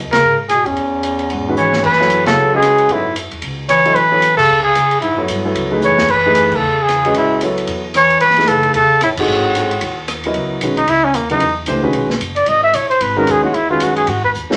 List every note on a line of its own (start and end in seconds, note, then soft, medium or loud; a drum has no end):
0.05 0.13 D#2 medium
0.12 0.22 C2 medium
0.12 0.37 C#3 medium
0.12 0.37 A#4 loud
0.12 snare medium
0.12 ride medium
0.24 0.63 G#2 medium
0.49 0.68 B2 medium
0.49 0.68 G#4 medium
0.49 cross-stick medium
0.49 hi-hat pedal medium
0.49 ride medium
0.66 0.76 D#2 medium
0.66 1.56 E2 medium
0.66 1.56 C#4 medium
0.66 kick soft
0.66 ride soft
0.76 1.27 E2 medium
0.76 ride soft
1.03 hi-hat pedal medium
1.03 ride medium
1.19 ride soft
1.30 1.81 G#2 medium
1.30 ride soft
1.48 1.82 D#3 medium
1.48 1.82 G#3 medium
1.48 1.82 C#4 medium
1.48 1.82 F#4 medium
1.48 1.82 B4 medium
1.56 1.81 E3 medium
1.56 1.81 C#5 loud
1.56 hi-hat pedal medium
1.73 snare medium
1.82 2.34 F#2 medium
1.82 2.22 E3 medium
1.82 2.24 B4 loud
1.82 kick medium
1.82 crash medium
1.92 snare soft
2.00 2.25 F#3 medium
2.00 2.25 B3 medium
2.00 2.25 E4 medium
2.00 2.25 A4 medium
2.00 2.25 C#5 medium
2.00 snare soft
2.10 hi-hat pedal medium
2.10 ride medium
2.26 2.50 C#3 medium
2.26 2.51 F#3 medium
2.26 2.51 B3 medium
2.26 2.51 E4 medium
2.26 2.51 A4 medium
2.26 2.51 C#5 medium
2.26 snare medium
2.26 ride medium
2.37 2.87 C#2 medium
2.53 2.94 C#3 medium
2.53 2.88 G#3 medium
2.53 2.88 C#4 medium
2.53 2.88 F#4 medium
2.53 2.94 G#4 loud
2.53 2.88 B4 medium
2.53 2.88 D#5 medium
2.62 cross-stick medium
2.62 hi-hat pedal medium
2.62 ride medium
2.78 ride soft
2.88 3.28 F#2 medium
2.88 3.04 F#3 medium
2.88 3.04 B3 medium
2.88 3.04 E4 soft
2.88 3.04 A4 medium
2.88 3.05 C#5 medium
2.88 ride medium
2.92 3.18 G#2 medium
2.92 3.18 E4 medium
3.16 hi-hat pedal medium
3.16 ride medium
3.31 3.42 E2 medium
3.31 ride soft
3.42 3.93 C#2 medium
3.42 ride medium
3.69 3.96 E3 loud
3.69 3.97 C#5 loud
3.69 cross-stick medium
3.69 hi-hat pedal medium
3.69 ride medium
3.85 3.95 F#3 medium
3.85 3.95 B3 medium
3.85 3.95 E4 medium
3.85 3.95 A4 medium
3.85 3.95 D#5 medium
3.85 ride soft
3.95 4.46 A1 medium
3.95 4.36 E3 medium
3.95 4.37 B4 loud
3.95 ride medium
4.11 4.21 F#3 medium
4.11 4.21 B3 medium
4.11 4.21 E4 medium
4.11 4.21 A4 medium
4.11 4.21 C#5 medium
4.22 hi-hat pedal medium
4.22 ride medium
4.37 4.62 C#3 medium
4.37 4.63 A4 loud
4.37 kick medium
4.37 crash medium
4.49 4.74 C#2 medium
4.62 4.98 C#3 medium
4.62 4.99 G#4 medium
4.75 5.00 F2 medium
4.75 cross-stick medium
4.75 hi-hat pedal medium
4.75 ride medium
4.91 ride soft
5.01 5.27 F#2 medium
5.01 5.26 G#2 medium
5.01 5.26 E4 medium
5.01 ride soft
5.18 5.43 F#3 medium
5.18 5.43 B3 medium
5.18 5.43 E4 medium
5.18 5.43 A4 medium
5.18 5.43 C#5 medium
5.28 5.54 G2 medium
5.28 hi-hat pedal medium
5.28 ride medium
5.45 5.70 F#3 medium
5.45 5.70 B3 medium
5.45 5.70 E4 medium
5.45 5.70 A4 medium
5.45 5.70 C#5 medium
5.54 5.88 C#2 medium
5.54 ride medium
5.71 6.07 E3 medium
5.71 6.07 A3 medium
5.71 6.07 D#4 medium
5.71 6.07 G#4 medium
5.71 6.07 B4 medium
5.82 6.10 E3 medium
5.82 6.12 C#5 loud
5.82 hi-hat pedal medium
5.89 5.98 F#2 medium
5.98 6.08 E2 medium
5.98 snare medium
6.08 6.48 F#2 medium
6.08 6.55 E3 medium
6.08 6.57 B4 loud
6.08 kick medium
6.08 crash medium
6.26 6.61 E3 medium
6.26 6.60 A3 medium
6.26 6.60 D#4 medium
6.26 6.60 G#4 medium
6.26 6.61 B4 medium
6.35 hi-hat pedal medium
6.35 ride medium
6.51 6.60 G2 medium
6.51 6.81 C#3 medium
6.51 kick medium
6.51 crash medium
6.56 6.84 A4 medium
6.60 7.12 E2 medium
6.81 7.17 C#3 medium
6.81 7.16 G#4 loud
6.88 cross-stick medium
6.88 hi-hat pedal medium
6.88 ride medium
7.05 7.40 G#3 medium
7.05 7.40 C#4 medium
7.05 7.40 F#4 medium
7.05 7.40 B4 medium
7.05 7.40 D#5 medium
7.05 ride soft
7.14 7.65 C#2 medium
7.14 7.41 A2 medium
7.14 7.41 E4 medium
7.14 ride medium
7.41 7.82 F#3 medium
7.41 7.82 B3 medium
7.41 7.81 E4 medium
7.41 7.82 A4 medium
7.41 7.82 C#5 medium
7.41 hi-hat pedal medium
7.41 ride medium
7.58 ride soft
7.67 8.18 E2 medium
7.67 ride medium
7.94 8.19 E3 medium
7.94 8.21 C#5 loud
7.94 cross-stick medium
7.94 hi-hat pedal medium
7.94 ride medium
8.10 ride soft
8.20 8.72 F#2 medium
8.20 8.51 E3 medium
8.20 8.50 B4 loud
8.20 ride medium
8.30 snare soft
8.36 8.73 E3 medium
8.36 8.73 A3 medium
8.36 8.73 D#4 soft
8.36 8.73 G#4 medium
8.36 8.73 B4 medium
8.36 snare soft
8.36 ride soft
8.47 8.75 C#3 medium
8.47 8.75 A4 loud
8.47 hi-hat pedal medium
8.47 ride medium
8.63 ride soft
8.74 9.14 E2 medium
8.74 9.00 A4 loud
8.74 ride medium
8.78 9.01 C#3 medium
9.01 9.11 A2 medium
9.01 9.10 E4 medium
9.01 cross-stick medium
9.01 hi-hat pedal medium
9.01 ride medium
9.17 9.27 A1 medium
9.17 10.05 A2 medium
9.17 9.53 C4 medium
9.17 9.54 D#4 medium
9.17 9.54 F#4 medium
9.17 10.06 F#4 medium
9.17 9.53 G#4 medium
9.17 9.54 A4 medium
9.17 kick medium
9.17 crash medium
9.27 9.78 G#1 medium
9.55 9.70 G#3 medium
9.55 9.69 C4 medium
9.55 9.70 D#4 soft
9.55 9.70 F#4 soft
9.55 9.70 A4 medium
9.55 hi-hat pedal medium
9.55 ride medium
9.71 ride soft
9.81 10.32 D#2 medium
9.81 ride medium
10.08 cross-stick medium
10.08 hi-hat pedal medium
10.08 ride medium
10.24 10.60 F#3 medium
10.24 10.60 B3 medium
10.24 10.60 E4 medium
10.24 10.60 A#4 medium
10.24 10.60 D#5 medium
10.24 ride soft
10.34 10.60 C#2 medium
10.34 ride soft
10.61 10.86 B1 medium
10.61 10.76 D#3 medium
10.61 10.76 G#3 soft
10.61 10.77 C#4 medium
10.61 10.77 F#4 medium
10.61 10.77 B4 medium
10.61 hi-hat pedal medium
10.61 ride medium
10.77 10.91 D#4 medium
10.77 ride soft
10.87 11.13 C#2 medium
10.87 11.06 E4 loud
10.87 ride medium
11.04 11.17 C#4 medium
11.14 11.40 D#2 medium
11.14 11.31 A#3 medium
11.14 hi-hat pedal medium
11.14 ride medium
11.29 11.40 C#3 medium
11.29 11.40 F#3 medium
11.29 11.40 B3 medium
11.29 11.56 D#4 medium
11.29 11.40 E4 medium
11.29 11.40 A#4 medium
11.29 ride soft
11.40 11.66 E2 medium
11.40 ride medium
11.66 11.92 C#2 medium
11.66 11.82 E3 medium
11.66 11.82 A3 medium
11.66 11.82 D4 medium
11.66 11.82 G4 medium
11.66 11.82 C5 medium
11.66 hi-hat pedal medium
11.66 ride medium
11.83 12.07 D#3 medium
11.83 12.07 G#3 medium
11.83 12.07 C#4 medium
11.83 12.07 F#4 medium
11.83 12.07 B4 medium
11.93 12.19 B1 medium
11.93 ride medium
12.10 snare medium
12.20 12.46 F#1 medium
12.20 hi-hat pedal medium
12.20 ride medium
12.36 12.50 D5 medium
12.36 ride soft
12.46 12.73 G#1 medium
12.46 12.63 D#5 loud
12.46 ride medium
12.64 12.77 E5 loud
12.73 13.00 A#1 medium
12.73 12.89 C#5 medium
12.73 hi-hat pedal medium
12.73 ride medium
12.90 13.04 C5 medium
12.90 ride soft
13.01 13.26 G#1 loud
13.01 13.19 B4 medium
13.01 ride medium
13.16 13.42 D#3 medium
13.16 13.42 G#3 medium
13.16 13.42 C#4 medium
13.16 13.42 F#4 medium
13.16 13.33 A#4 medium
13.16 13.42 B4 medium
13.27 13.52 D#2 medium
13.27 hi-hat pedal medium
13.27 ride medium
13.31 13.44 G#4 medium
13.43 13.53 E3 medium
13.43 13.53 A#3 medium
13.43 13.53 D#4 medium
13.43 13.56 F#4 medium
13.43 13.53 G#4 medium
13.43 13.53 C#5 medium
13.53 13.79 E2 medium
13.53 13.70 E4 medium
13.53 ride medium
13.70 14.05 D#3 medium
13.70 14.05 G#3 medium
13.70 14.05 C#4 medium
13.70 13.85 F4 medium
13.70 14.05 F#4 medium
13.70 14.06 B4 medium
13.80 14.06 F#2 medium
13.80 13.96 F#4 medium
13.80 hi-hat pedal medium
13.80 ride medium
13.96 14.11 G#4 medium
13.96 ride soft
14.07 14.33 G#2 medium
14.07 14.24 F#4 medium
14.07 ride medium
14.24 14.31 B4 medium
14.24 kick medium
14.34 14.49 D#2 medium
14.34 hi-hat pedal soft
14.50 14.57 E3 medium
14.50 14.57 A#3 medium
14.50 14.57 D#4 medium
14.50 14.57 G#4 medium
14.50 14.57 C#5 medium
14.50 muted upright bass stroke soft
14.50 snare medium